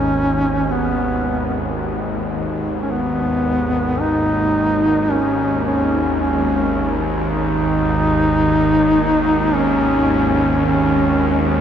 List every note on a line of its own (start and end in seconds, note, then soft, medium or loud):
0.00 11.61 G#1 medium
0.00 11.61 D#2 medium
0.00 11.61 G#3 medium
0.00 0.73 C#4 loud
0.00 1.77 G#4 medium
0.50 11.61 D#4 medium
0.71 1.80 B3 medium
1.34 8.14 A#4 medium
2.82 2.92 C#4 medium
2.91 4.01 B3 medium
4.00 5.12 D#4 medium
5.11 5.64 C#4 loud
5.65 6.18 C#4 medium
6.21 7.02 C#4 medium
7.33 9.56 D#4 loud
9.55 10.65 C#4 loud
10.66 11.47 C#4 medium